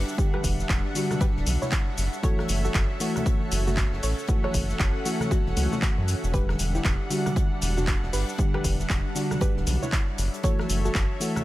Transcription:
Already playing: analog synth pad G3 D4 F#5, ambient pad G3 D4 E5 F#5, synth pluck G4 B4
0.08 shaker
0.18 fm electric piano D3 G3 G4, kick, closed hi-hat, shaker
0.34 synth pluck G4 B4, cross-stick, high conga
0.44 analog synth bass E1, kick, closed hi-hat, open hi-hat, shaker
0.59 snare, shaker
0.69 analog synth bass E1, kick, snare, clap, closed hi-hat, shaker
0.94 fm electric piano D3 G3 F#4, closed hi-hat, open hi-hat, shaker
1.11 cross-stick, snare, high conga, low conga, shaker
1.20 synth pluck G4 B4, kick, closed hi-hat, shaker
1.36 analog synth bass D1, snare
1.46 analog synth bass B1, closed hi-hat, open hi-hat, high conga, shaker
1.62 synth pluck E4 C#5, snare, low conga, shaker
1.71 kick, snare, clap, closed hi-hat, shaker
1.97 analog synth bass F#1, ambient pad C#4, analog synth pad A4 C#5 E5, closed hi-hat, open hi-hat, shaker
2.13 closed hi-hat, shaker
2.20 fm electric piano E3 A3 F#4, ambient pad A4, synth pluck A4 C#5, kick, closed hi-hat, shaker
2.39 cross-stick, snare, high conga
2.48 analog synth bass F#1, closed hi-hat, open hi-hat, shaker
2.64 synth pluck F#4 A4, snare, shaker
2.74 analog synth bass F#1, kick, snare, clap, closed hi-hat, shaker
3.00 fm electric piano E3 A3 F#4, closed hi-hat, open hi-hat, shaker
3.16 cross-stick, closed hi-hat, high conga, low conga, shaker
3.26 kick, closed hi-hat, shaker
3.51 analog synth bass F#1, closed hi-hat, open hi-hat, shaker
3.67 synth pluck A3 F#4, snare, low conga, shaker
3.77 kick, snare, clap, closed hi-hat, shaker
3.93 analog synth bass F#1, snare
4.03 analog synth bass A1, synth pluck A4 C#5, analog synth pad F#5, open hi-hat, shaker
4.19 shaker
4.27 fm electric piano E3 A3 F#4, kick, closed hi-hat, shaker
4.44 synth pluck A4 C#5, cross-stick, high conga
4.54 analog synth bass F#1, kick, closed hi-hat, open hi-hat, shaker
4.70 snare, shaker
4.79 analog synth bass F#1, kick, snare, clap, closed hi-hat, shaker
5.05 fm electric piano E3 A3 F#4, closed hi-hat, open hi-hat, shaker
5.20 cross-stick, snare, high conga, low conga, shaker
5.31 synth pluck A3 F#4, kick, closed hi-hat, shaker
5.46 analog synth bass E1, snare
5.56 analog synth bass C#2, fm electric piano E3 A3 F#4, closed hi-hat, open hi-hat, high conga, shaker
5.72 synth pluck A3 F#4, snare, low conga, shaker
5.82 kick, snare, clap, closed hi-hat, shaker
5.98 analog synth bass F#2
6.08 closed hi-hat, open hi-hat, shaker
6.24 analog synth bass E1, closed hi-hat, shaker
6.33 fm electric piano D3 G3 G4, analog synth pad G3 D4 F#5, ambient pad D4, synth pluck G4 B4, kick, closed hi-hat, shaker
6.49 cross-stick, snare, high conga
6.59 analog synth bass E1, ambient pad G3, closed hi-hat, open hi-hat, shaker
6.75 synth pluck E4 G4, snare, shaker
6.85 analog synth bass E1, kick, snare, clap, closed hi-hat, shaker
7.10 fm electric piano D3 G3 F#4, closed hi-hat, open hi-hat, shaker
7.26 cross-stick, closed hi-hat, high conga, low conga, shaker
7.36 kick, closed hi-hat, shaker
7.61 analog synth bass E1, closed hi-hat, open hi-hat, shaker
7.77 synth pluck D4 F#4, snare, low conga, shaker
7.87 kick, snare, clap, closed hi-hat, shaker
8.03 analog synth bass E1, snare
8.13 analog synth bass G1, synth pluck G4 B4, open hi-hat, shaker
8.29 shaker
8.38 fm electric piano D3 G3 G4, kick, closed hi-hat, shaker
8.54 synth pluck G4 B4, cross-stick, high conga
8.64 analog synth bass E1, kick, closed hi-hat, open hi-hat, shaker
8.80 snare, shaker
8.90 analog synth bass E1, kick, snare, clap, closed hi-hat, shaker
9.15 fm electric piano D3 G3 F#4, closed hi-hat, open hi-hat, shaker
9.31 cross-stick, snare, high conga, low conga, shaker
9.41 synth pluck G4 B4, kick, closed hi-hat, shaker
9.57 analog synth bass D1, snare
9.67 analog synth bass B1, closed hi-hat, open hi-hat, high conga, shaker
9.82 synth pluck E4 C#5, snare, low conga, shaker
9.92 kick, snare, clap, closed hi-hat, shaker
10.18 analog synth bass F#1, ambient pad C#4, analog synth pad A4 C#5 E5, closed hi-hat, open hi-hat, shaker
10.34 closed hi-hat, shaker
10.43 fm electric piano E3 A3 F#4, synth pluck A4 C#5, kick, closed hi-hat, shaker
10.59 cross-stick, snare, high conga
10.68 analog synth bass F#1, ambient pad A4, closed hi-hat, open hi-hat, shaker
10.85 synth pluck F#4 A4, snare, shaker
10.95 analog synth bass F#1, kick, snare, clap, closed hi-hat, shaker
11.20 fm electric piano E3 A3 F#4, closed hi-hat, open hi-hat, shaker
11.36 cross-stick, closed hi-hat, high conga, low conga, shaker

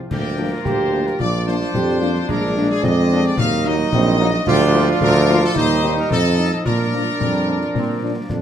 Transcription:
Already playing: trombone section F3
0.10 tuba D2, euphonium A#3, trombone section A#3, woodwind section F4 A#4, trumpet section G4, concert bass drum, snare, crash
0.38 french horn section F3 A#3 D4
0.52 trumpet section F4
0.65 tuba D2, euphonium G4, trumpet section C5, concert bass drum, snare
0.92 french horn section F3 A#3 D4
1.06 trumpet section A#4, snare
1.18 tuba A#1, trombone section F3 D4, euphonium F4, woodwind section D5, trumpet section D5, concert bass drum, snare
1.46 french horn section F3 A#3 D4, trumpet section C5, snare
1.61 snare
1.74 tuba F2, euphonium G4, concert bass drum, snare
2.01 french horn section F3 A#3 D4, euphonium F4, snare
2.15 snare
2.28 tuba A#1, trombone section G#3, euphonium D4, woodwind section G#4, trumpet section A#4, concert bass drum, snare, crash
2.57 french horn section G#3 A#3 D4
2.70 trumpet section G#4
2.83 tuba F2, euphonium C4, trumpet section D#5, concert bass drum, snare
3.11 french horn section G#3 A#3 D4
3.24 trumpet section D5, snare
3.36 tuba D#2, trombone section F#3 D#4, euphonium A#3, woodwind section F#4 D#5, trumpet section F5, concert bass drum, snare
3.64 french horn section F#3 A#3 D#4, trumpet section D#5, snare
3.79 snare
3.92 tuba A#1, euphonium C4, concert bass drum, snare
4.19 french horn section F#3 A#3 D#4, euphonium A#3, snare
4.33 snare
4.46 tuba D2, trombone section F3 D4, euphonium F4, woodwind section F4 D5, trumpet section G4, concert bass drum, snare, crash
4.74 french horn section F3 A#3 F4
4.90 trumpet section F4
5.01 tuba D2, woodwind section F4 D5, trumpet section A#4, concert bass drum, snare
5.29 french horn section F3 A#3 F4
5.42 trumpet section A4, snare
5.55 tuba D#2, trombone section G3 D#4, euphonium D#4, woodwind section G4 D#5, trumpet section C5, concert bass drum, snare
5.83 french horn section G3 A#3 D#4, snare
5.97 trumpet section A#4, snare
6.11 tuba F2, trombone section F3, woodwind section F4 D#5, trumpet section A4, concert bass drum, snare
6.38 french horn section F3 C4 D#4, snare
6.51 trumpet section A4, snare
6.64 tuba A#2, trombone section F3 D4, euphonium D4, woodwind section F4 D5, trumpet section A#4, concert bass drum, snare, crash
6.93 french horn section F3 A#3 D4
7.20 tuba F2, trombone section G3, concert bass drum, snare
7.47 french horn section F3 A#3 D4
7.61 trombone section F3, snare
7.75 tuba A#2, trombone section C4, concert bass drum, snare
8.02 french horn section F3 A#3 D4
8.16 trombone section A#3
8.29 tuba F2, trombone section D4, concert bass drum, snare

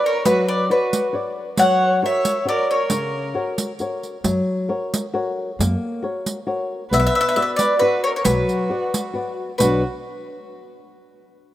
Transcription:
Already playing: nylon-string guitar B4 C#5 D5
0.06 violin A#4, mandolin C#5
0.25 nylon-string guitar F#3, violin F#4, mandolin B4, riq
0.49 violin B4, mandolin D5
0.70 violin F#4, nylon-string guitar B4 C#5 D5, mandolin B4
0.93 riq
1.13 nylon-string guitar B4 C#5 D5
1.57 nylon-string guitar F#3, violin C#5, mandolin F#5, riq
2.02 nylon-string guitar F#4 A#4 C#5, violin C#5, mandolin E5
2.25 riq
2.45 nylon-string guitar F#4 A#4 C#5, mandolin D5
2.50 violin A#4
2.71 violin A#4, mandolin C#5
2.90 nylon-string guitar C#3, riq
3.34 nylon-string guitar F#4 A#4 C#5
3.58 riq
3.79 nylon-string guitar F#4 A#4 C#5, riq
4.03 riq
4.24 upright bass F#2, nylon-string guitar F#3, riq
4.69 nylon-string guitar F#4 A#4 C#5
4.94 riq
5.13 nylon-string guitar F#4 A#4 C#5
5.59 upright bass F#2, nylon-string guitar A#3, riq
6.02 nylon-string guitar F#4 A#4 C#5
6.26 riq
6.47 nylon-string guitar F#4 A#4 C#5
6.90 upright bass B1, nylon-string guitar B3, violin B4, mandolin E5, riq
7.00 mandolin E5
7.07 mandolin E5
7.15 mandolin E5
7.21 mandolin E5
7.29 mandolin E5
7.36 nylon-string guitar F#4 B4 D5, mandolin E5
7.42 mandolin E5
7.56 violin B4, mandolin D5, riq
7.79 violin F#4, nylon-string guitar F#4 B4 D5, mandolin B4
8.04 violin A#4, mandolin C#5
8.16 violin A#4, mandolin C#5
8.25 upright bass B1, nylon-string guitar F#3, violin F#4, mandolin B4, riq
8.49 riq
8.70 nylon-string guitar F#4 B4 D5
8.94 riq
9.14 nylon-string guitar F#4 B4 D5
9.58 upright bass B1, nylon-string guitar B2 F#3 B3 D4 F#4, violin F#4, mandolin B4, riq

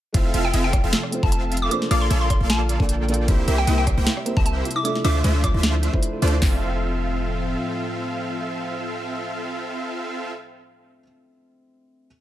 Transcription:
0.12 808-style bass F1, analog synth pad C3 F3 A4, felt piano A3 C4 E4 F4 C5, supersaw synth C4 F4 A4 E5 F5, kick, closed hi-hat
0.34 808-style bass F1, supersaw synth C4 F4 A4 E5 F5, closed hi-hat
0.45 synth pluck G5
0.54 808-style bass F1, supersaw synth C4 F4 A4 E5 F5, closed hi-hat
0.64 synth pluck G5
0.73 synth pluck G5, kick, cross-stick, closed hi-hat
0.84 808-style bass F1, supersaw synth C4 F4 A4 E5 F5
0.93 snare, closed hi-hat
1.03 cross-stick
1.10 felt piano A3 C4 F4, closed hi-hat
1.14 felt piano C5
1.23 808-style bass F1, supersaw synth C4 F4 A4 E5 F5, synth pluck A5, kick
1.32 synth pluck A5, closed hi-hat
1.52 closed hi-hat
1.57 closed hi-hat
1.62 synth pluck D6
1.69 analog synth pad D3 A#3 F4, felt piano A#3 D4 F4 A4 C5, synth pluck D6, closed hi-hat
1.82 snare
1.91 808-style bass A#1, supersaw synth A#3 F4 A4 D5 F5, synth pluck D6, closed hi-hat
2.01 synth pluck C6
2.10 808-style bass A#1, supersaw synth A#3 F4 A4 D5 F5, closed hi-hat
2.21 synth pluck C6
2.30 synth pluck C6, kick, cross-stick, closed hi-hat
2.41 808-style bass A#1, supersaw synth A#3 F4 A4 D5 F5
2.50 synth pluck A5, snare, closed hi-hat
2.69 closed hi-hat
2.79 808-style bass A#1, felt piano A#3 D4 F4 A4 D5, supersaw synth A#3 D5 G5, kick
2.89 closed hi-hat
3.08 felt piano A#3 D4 F4 A4 D5, closed hi-hat
3.14 closed hi-hat
3.26 808-style bass C2, analog synth pad C3 G3 E5, felt piano A#3 C4 E4 G4 C5, supersaw synth A#3 E4 G4 C5 E5, synth arpeggio sound E4, kick, closed hi-hat
3.39 synth arpeggio sound G4
3.48 808-style bass C2, supersaw synth A#3 E4 G4 C5 E5, synth arpeggio sound A#4, closed hi-hat
3.58 synth arpeggio sound C5, synth pluck G5
3.67 808-style bass C2, supersaw synth A#3 E4 G4 C5 E5, synth arpeggio sound E5, closed hi-hat
3.78 synth arpeggio sound C5, synth pluck G5
3.87 synth pluck G5, kick, cross-stick, closed hi-hat
3.97 808-style bass C2, supersaw synth A#3 E4 G4 C5 G5, synth arpeggio sound G4
4.07 synth arpeggio sound E4, snare, closed hi-hat
4.17 synth arpeggio sound G4, cross-stick
4.25 felt piano A#3 C4 E4 G4 C5, synth arpeggio sound A#4, closed hi-hat
4.37 808-style bass C2, supersaw synth A#3 E4 G4 C5 E5, synth pluck A5, kick
4.46 synth arpeggio sound E5, synth pluck A5, closed hi-hat
4.56 synth arpeggio sound C5
4.65 analog synth pad F3 D4, synth arpeggio sound F4, closed hi-hat
4.71 closed hi-hat
4.76 synth arpeggio sound E4, synth pluck D6
4.83 felt piano A3 D4 F4 A4 E5, synth arpeggio sound D4, synth pluck D6, closed hi-hat
4.96 synth arpeggio sound E4, snare
5.04 808-style bass D2, supersaw synth A3 D4 F4 C5 E5, synth arpeggio sound F4, synth pluck D6, closed hi-hat
5.15 synth arpeggio sound A4
5.24 808-style bass D2, supersaw synth A3 D4 F4 C5 E5, synth arpeggio sound C5, closed hi-hat
5.35 synth arpeggio sound A4
5.44 synth arpeggio sound F4, synth pluck D6, kick, cross-stick, closed hi-hat
5.54 808-style bass D2, supersaw synth A3 D4 F4 C5 E5, synth arpeggio sound E4
5.63 synth arpeggio sound D4, snare, closed hi-hat
5.74 synth arpeggio sound E4
5.83 synth arpeggio sound F4, closed hi-hat
5.93 felt piano A3 D4 E4 F4 C5, synth arpeggio sound A4, kick
6.03 synth arpeggio sound C5, closed hi-hat
6.13 synth arpeggio sound A4
6.21 808-style bass D2, felt piano A3 D4 E4 F4 C5, supersaw synth A3 D4 F4 C5 D5, synth arpeggio sound F4, closed hi-hat
6.27 closed hi-hat
6.33 synth arpeggio sound E4
6.39 808-style bass F1, analog synth pad A2 F3 C4, felt piano A3 C4, supersaw synth C4 F4 A4, synth arpeggio sound E4, kick, snare, open hi-hat
6.43 felt piano F4 C5

